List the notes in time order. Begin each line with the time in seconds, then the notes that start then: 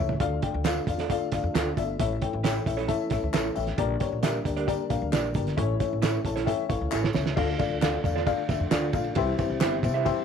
Already playing: C#2 E3 A3 C#4 E4 A4 C#5 E5
0.09 floor tom
0.19 D2 D3 D4 F4 A4 D5 F5, kick, closed hi-hat
0.42 F4 A4 D5 G5, kick, closed hi-hat
0.54 D2
0.64 D4 F4 A4 D5 F5, snare, clap, closed hi-hat, tambourine
0.87 E2 F4 A4 D5 F5, kick, closed hi-hat, tambourine
0.98 D4 F4 A4 D5, snare, closed hi-hat
1.10 F4 A4 D5 F5, kick, closed hi-hat, tambourine
1.32 D2 F4 A4 D5 F5, kick, snare, closed hi-hat, tambourine
1.43 F2
1.54 D2 D4 F4 A4 D5 F5, snare, clap, closed hi-hat, tambourine
1.77 G1 F4 A4 D5 E5, kick, closed hi-hat, tambourine
1.99 A1 A2 E3 C#4 E4 A4 C#5 E5, kick, closed hi-hat, tambourine
2.21 E4 A4 C#5 G5, kick, closed hi-hat
2.33 A1
2.44 C#4 E4 A4 C#5 G5, snare, clap, closed hi-hat, tambourine
2.66 A#1 E4 A4 C#5 E5 G5, kick, closed hi-hat, tambourine
2.77 C#4 E4 A4 C#5, closed hi-hat
2.88 E4 A4 C#5 E5 A5, kick, closed hi-hat, tambourine
3.10 A1 E4 A4 C#5 E5, kick, snare, closed hi-hat, tambourine
3.23 C#2
3.33 A1 C#4 E4 A4 C#5 E5 A5, snare, clap, closed hi-hat, tambourine
3.55 A1 E4 A4 C#5 E5 G5, open hi-hat, tambourine
3.67 snare, closed hi-hat
3.77 A#1 A#2 D3 G3 A#3 D4 G4 A#4 D5, kick, closed hi-hat
4.00 D4 G4 A#4 C#5, kick, closed hi-hat, tambourine
4.12 A#1
4.23 D4 G4 A#4 D5 E5, snare, clap, closed hi-hat, tambourine
4.45 D2 D4 G4 A#4 D5, kick, closed hi-hat, tambourine
4.56 D4 G4 A#4 D5, closed hi-hat
4.67 D4 G4 A#4 D5, kick, closed hi-hat, tambourine
4.89 A#1 D4 G4 A#4 F5, kick, closed hi-hat, tambourine
5.02 D2
5.12 A#1 D4 G4 A#4 D5, snare, clap, closed hi-hat, tambourine
5.34 G1 D4 G4 A#4 D5, kick, closed hi-hat, tambourine
5.47 snare, closed hi-hat
5.56 A1 A2 E3 A3 C#4 E4 A4 C#5, kick, closed hi-hat
5.80 C#4 E4 A4 C#5, kick, closed hi-hat, tambourine
5.93 A1
6.02 C#4 E4 A4 C#5, snare, clap, closed hi-hat, tambourine
6.24 A#1 C#4 E4 A4 C#5 A5, kick, closed hi-hat, tambourine
6.36 C#4 E4 A4 C#5, snare, closed hi-hat
6.46 C#4 E4 A4 E5 G5, kick, closed hi-hat, tambourine
6.69 A1 C#4 E4 A4 C#5 F5, kick, closed hi-hat, tambourine
6.81 C#2
6.91 A1 C#4 E4 A4 C#5 E5, clap, tambourine
7.04 snare
7.13 C#2 C#4 E4 A4 C#5, snare, tambourine
7.26 snare
7.36 D2 D3 A3 D4 F4 A4 D5 F5, kick, crash, tambourine
7.58 D4 F4 A4 D5 F5, kick, ride, tambourine
7.70 D2
7.81 D4 F4 A4 D5 F5, snare, clap, ride, tambourine
8.04 E2 D4 F4 A4 D5 F5, kick, ride, tambourine
8.16 D4 F4 A4 D5, snare
8.26 D4 F4 A4 D5 F5, kick, ride, tambourine
8.49 D2 D4 F4 A4 D5 E5, kick, snare, ride, tambourine
8.60 F2
8.71 D2 D4 F4 A4 D5 F5, snare, clap, ride, tambourine
8.93 A#1 D4 F4 A4 D5 F5, kick, ride, tambourine
9.04 ride
9.15 C2 C3 E3 G3 C4 E4 G4 C5 E5, kick, ride, tambourine
9.38 C4 E4 G4 C5 E5, kick, ride, tambourine
9.50 C2
9.60 G1 C4 E4 G4 C5 E5, snare, clap, ride, tambourine
9.83 C3 C4 E4 G4 C5 E5, kick, ride, tambourine
9.94 E4 G4 C5 E5
10.05 C4 E4 G4 C5 E5, kick, ride, tambourine